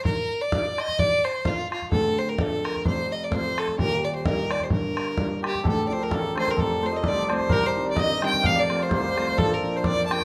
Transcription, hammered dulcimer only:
X:1
M:2/4
L:1/16
Q:"Swing" 1/4=129
K:Fmix
V:1 name="Hammered dulcimer"
z8 | z8 | z8 | z8 |
z8 | z6 G2 | A3 B A2 c B | A2 c e d2 c2 |
B c2 d e2 g2 | f d2 c c4 | A B2 c d2 g2 |]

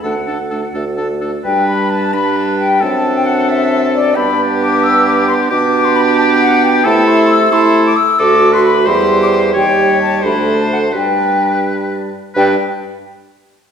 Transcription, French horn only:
X:1
M:6/8
L:1/8
Q:3/8=88
K:G
V:1 name="French horn"
A, A, A, A, A, A, | G,3 G,3 | C6 | B,6 |
B,6 | A,3 A,2 z | A,3 G,3 | G,3 A,3 |
G,4- G, z | G, z4 z |]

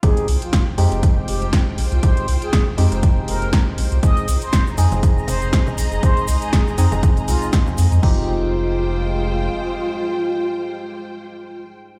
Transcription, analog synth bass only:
X:1
M:4/4
L:1/16
Q:"Swing 16ths" 1/4=120
K:Fm
V:1 name="Analog synth bass" clef=bass
F,,, z C,, z E,,, z F,, F,,,2 z F,,,2 z2 B,,, C,, | F,,, z C,, z E,,, z F,, F,,,2 z F,,,2 z2 B,,, C,, | F,,, z C,, z E,,, z F,, F,,,2 z F,,,2 z2 B,,, F,,, | F,,, z C,, z E,,, z F,, F,,,2 z C,, z3 F,, F,, |
F,,,12 z4 | z16 |]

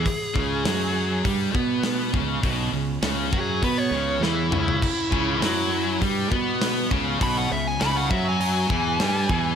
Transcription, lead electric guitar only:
X:1
M:4/4
L:1/16
Q:1/4=101
K:C#m
V:1 name="Lead electric guitar"
G8 z8 | z6 G2 B c3 E4- | E8 z8 | b f e g b f e g g8 |]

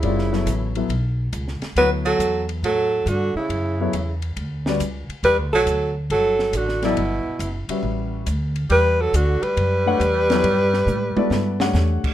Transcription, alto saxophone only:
X:1
M:4/4
L:1/8
Q:"Swing" 1/4=138
K:Edor
V:1 name="Alto saxophone"
E3 z4 z | B A2 z A2 F E- | E3 z4 z | B A2 z A2 F E- |
E3 z4 z | B A F B4- B- | B6 z2 |]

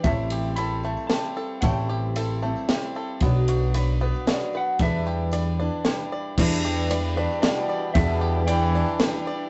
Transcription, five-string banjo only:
X:1
M:3/4
L:1/8
Q:1/4=114
K:Em
V:1 name="Five-string banjo"
A, G A A, G A | A, G A A, G A | B, F B B, F B | D G d D G d |
D G d D G d | D G d D G d |]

